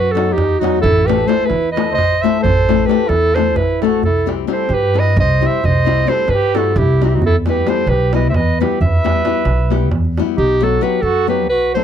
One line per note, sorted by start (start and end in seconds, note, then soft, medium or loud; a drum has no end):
0.00 0.35 F#2 medium
0.00 0.13 F#4 loud
0.00 0.13 B4 loud
0.12 0.33 F#3 medium
0.12 0.33 B3 medium
0.12 0.33 F#4 medium
0.12 0.34 A4 medium
0.17 0.34 D#4 soft
0.17 0.34 F#4 medium
0.17 darbuka tek medium
0.32 0.85 E2 loud
0.32 0.59 D#4 medium
0.32 0.61 G4 medium
0.38 darbuka tek medium
0.38 darbuka dum medium
0.51 darbuka tek soft
0.59 0.80 F#3 medium
0.59 0.80 B3 medium
0.59 0.81 D#4 medium
0.59 0.80 D#4 medium
0.59 0.81 F#4 medium
0.59 0.80 F#4 medium
0.64 darbuka tek medium
0.76 darbuka tek soft
0.81 1.23 A1 loud
0.81 1.07 E4 medium
0.81 1.08 A4 loud
0.86 darbuka dum loud
0.98 darbuka tek soft
1.06 1.25 A3 medium
1.06 1.25 C4 medium
1.06 1.25 E4 medium
1.06 1.28 G4 medium
1.06 1.26 A4 medium
1.06 1.29 B4 medium
1.06 darbuka tek medium
1.20 darbuka tek soft
1.26 1.45 A3 medium
1.26 1.45 C4 medium
1.26 1.46 E4 medium
1.26 1.49 A4 medium
1.26 1.46 A4 medium
1.26 1.47 C5 medium
1.26 darbuka tek medium
1.39 darbuka tek soft
1.45 1.72 E4 medium
1.45 1.71 B4 medium
1.50 1.97 E2 medium
1.50 darbuka tek medium
1.63 darbuka tek soft
1.72 1.93 A3 soft
1.72 1.91 B4 medium
1.72 1.94 D#5 medium
1.77 1.94 C4 soft
1.77 1.94 E4 soft
1.77 1.94 A4 medium
1.77 darbuka tek medium
1.92 2.19 C5 medium
1.92 2.23 D#5 loud
1.97 2.26 A1 medium
1.97 darbuka tek medium
1.97 darbuka dum medium
2.12 darbuka tek soft
2.19 2.40 C5 medium
2.19 2.42 E5 medium
2.23 2.41 A3 medium
2.23 2.42 C4 soft
2.23 2.42 E4 medium
2.23 2.42 A4 medium
2.23 darbuka tek medium
2.35 darbuka tek soft
2.41 2.84 A1 medium
2.41 2.88 A4 medium
2.41 2.87 C5 loud
2.45 darbuka dum loud
2.58 darbuka tek soft
2.69 2.86 A3 medium
2.69 2.86 C4 medium
2.69 2.86 E4 medium
2.69 2.86 A4 medium
2.69 darbuka tek medium
2.79 darbuka tek soft
2.86 3.06 A3 medium
2.86 3.06 C4 medium
2.86 3.08 G4 medium
2.86 3.10 B4 medium
2.86 darbuka tek medium
2.90 3.06 E4 soft
2.90 3.07 A4 medium
2.99 darbuka tek soft
3.07 3.58 E2 medium
3.07 3.36 E4 loud
3.07 3.36 A4 loud
3.07 darbuka tek medium
3.24 darbuka tek soft
3.34 3.53 A3 medium
3.34 3.54 C4 soft
3.34 3.54 E4 soft
3.34 3.58 A4 medium
3.34 3.54 A4 medium
3.34 3.58 C5 medium
3.34 darbuka tek medium
3.46 darbuka tek soft
3.56 4.05 A1 medium
3.56 3.84 E4 medium
3.56 3.81 B4 medium
3.56 darbuka tek medium
3.56 darbuka dum medium
3.70 darbuka tek soft
3.82 4.00 A3 medium
3.82 4.01 C4 medium
3.82 4.01 E4 medium
3.82 4.03 A4 medium
3.82 4.01 A4 medium
3.82 darbuka tek medium
3.86 4.05 F#4 medium
3.93 darbuka tek soft
4.03 4.44 C2 medium
4.03 4.28 E4 medium
4.03 4.27 A4 medium
4.03 darbuka dum medium
4.16 darbuka tek soft
4.26 4.44 G3 medium
4.26 4.44 C4 soft
4.26 4.45 E4 medium
4.26 4.45 G4 medium
4.26 darbuka tek medium
4.39 darbuka tek soft
4.47 4.65 G3 medium
4.47 4.65 C4 medium
4.47 4.66 E4 soft
4.47 4.66 G4 medium
4.47 darbuka tek medium
4.52 4.72 A4 medium
4.52 4.75 C5 medium
4.60 darbuka tek soft
4.69 5.18 G2 medium
4.69 5.00 G4 loud
4.69 darbuka tek medium
4.74 5.01 B4 loud
4.82 darbuka tek soft
4.94 5.12 G3 medium
4.94 5.12 C4 soft
4.94 5.12 E4 soft
4.94 5.13 G4 medium
4.94 darbuka tek medium
4.99 5.19 B4 medium
4.99 5.19 D#5 medium
5.17 5.45 C2 loud
5.17 5.47 C5 medium
5.17 5.48 D#5 medium
5.17 darbuka tek medium
5.17 darbuka dum medium
5.30 darbuka tek soft
5.41 5.59 G3 medium
5.41 5.59 C4 medium
5.41 5.60 E4 medium
5.41 5.60 G4 medium
5.41 darbuka tek soft
5.46 5.67 C5 medium
5.46 5.67 E5 medium
5.55 darbuka tek soft
5.64 6.03 C2 medium
5.64 6.13 C5 medium
5.64 6.10 D#5 loud
5.64 darbuka dum medium
5.77 darbuka tek soft
5.85 6.03 G3 medium
5.85 6.04 C4 medium
5.85 6.04 E4 medium
5.85 6.04 G4 medium
5.85 darbuka tek medium
5.99 darbuka tek soft
6.07 6.24 G3 medium
6.07 6.24 C4 medium
6.07 6.25 E4 medium
6.07 6.25 G4 medium
6.07 6.32 C5 medium
6.07 darbuka tek medium
6.12 6.35 A4 medium
6.18 darbuka tek soft
6.28 6.77 G2 medium
6.28 6.57 B4 loud
6.28 darbuka tek medium
6.34 6.59 G4 loud
6.42 darbuka tek soft
6.54 6.72 G3 medium
6.54 6.72 C4 soft
6.54 6.73 E4 medium
6.54 6.79 F#4 medium
6.54 6.73 G4 medium
6.54 6.79 A4 medium
6.54 darbuka tek medium
6.76 7.22 C2 loud
6.76 7.05 E4 medium
6.76 7.06 G4 medium
6.76 darbuka tek medium
6.76 darbuka dum medium
6.89 darbuka tek soft
7.01 7.19 G3 medium
7.01 7.19 C4 medium
7.01 7.11 D#4 medium
7.01 7.19 E4 medium
7.01 7.10 F#4 medium
7.01 7.20 G4 medium
7.01 darbuka tek medium
7.08 7.17 E4 medium
7.08 7.16 G4 medium
7.08 darbuka tek soft
7.14 7.25 D#4 medium
7.14 7.24 F#4 medium
7.22 7.61 E2 medium
7.22 7.36 E4 medium
7.22 darbuka dum medium
7.26 7.36 A4 loud
7.34 darbuka tek soft
7.46 7.63 G3 medium
7.46 7.63 B3 medium
7.46 7.64 E4 soft
7.46 7.64 G4 medium
7.46 7.70 B4 medium
7.46 darbuka tek medium
7.50 7.73 G4 medium
7.56 darbuka tek soft
7.66 7.83 G3 medium
7.66 7.83 B3 medium
7.66 7.84 E4 medium
7.66 7.84 G4 medium
7.66 7.91 C5 loud
7.66 darbuka tek medium
7.71 7.91 A4 medium
7.78 darbuka tek soft
7.87 8.34 B1 medium
7.87 8.14 G4 medium
7.87 8.14 B4 loud
7.87 darbuka tek medium
8.00 darbuka tek soft
8.13 8.30 G3 soft
8.13 8.31 B3 soft
8.13 8.31 E4 medium
8.13 8.31 G4 medium
8.13 8.29 B4 medium
8.13 8.29 D#5 medium
8.13 darbuka tek medium
8.29 8.37 C5 medium
8.29 8.37 E5 medium
8.34 8.63 E2 loud
8.34 8.61 B4 medium
8.34 8.60 D#5 loud
8.34 darbuka tek medium
8.34 darbuka dum medium
8.48 darbuka tek soft
8.60 8.77 G3 medium
8.60 8.78 B3 medium
8.60 8.78 E4 medium
8.60 8.78 G4 medium
8.60 8.81 G4 medium
8.60 8.80 B4 medium
8.60 darbuka tek medium
8.72 darbuka tek soft
8.81 9.19 E2 medium
8.81 9.89 E5 loud
8.81 darbuka dum medium
8.86 9.91 B4 medium
8.94 darbuka tek soft
9.04 9.21 G3 medium
9.04 9.21 B3 medium
9.04 9.21 E4 medium
9.04 9.21 G4 medium
9.04 darbuka tek medium
9.16 darbuka tek soft
9.25 9.41 G3 medium
9.25 9.42 B3 medium
9.25 9.42 E4 medium
9.25 9.43 G4 medium
9.25 darbuka tek medium
9.35 darbuka tek soft
9.45 9.91 B1 medium
9.45 darbuka tek medium
9.59 darbuka tek soft
9.70 9.88 G3 medium
9.70 9.88 B3 medium
9.70 9.89 E4 soft
9.70 9.89 G4 medium
9.70 darbuka tek medium
9.82 darbuka tek soft
9.91 10.20 E2 medium
9.91 darbuka tek medium
9.91 darbuka dum medium
10.05 darbuka tek soft
10.18 10.35 G3 medium
10.18 10.36 B3 medium
10.18 10.36 E4 medium
10.18 10.36 G4 medium
10.18 darbuka tek medium
10.28 darbuka tek soft
10.37 10.77 B1 medium
10.37 10.64 D#4 medium
10.37 10.65 G4 loud
10.61 10.78 F#3 medium
10.61 10.79 B3 medium
10.61 10.79 D#4 medium
10.61 10.86 F#4 medium
10.61 10.80 F#4 medium
10.61 10.84 A4 medium
10.81 10.99 F#3 medium
10.81 10.99 B3 medium
10.81 10.99 D#4 medium
10.81 10.99 F#4 medium
10.81 11.06 G4 medium
10.81 11.04 B4 medium
11.02 11.50 F#2 medium
11.02 11.29 F#4 loud
11.02 11.28 A4 loud
11.27 11.45 F#3 medium
11.27 11.46 B3 medium
11.27 11.46 D#4 soft
11.27 11.46 F#4 medium
11.27 11.49 G4 medium
11.27 11.49 B4 medium
11.49 11.78 B1 medium
11.49 11.75 F#4 medium
11.49 11.74 B4 loud
11.74 11.84 F#3 medium
11.74 11.84 B3 medium
11.74 11.84 D#4 medium
11.74 11.84 F#4 medium
11.74 11.84 A4 medium
11.74 11.84 C5 loud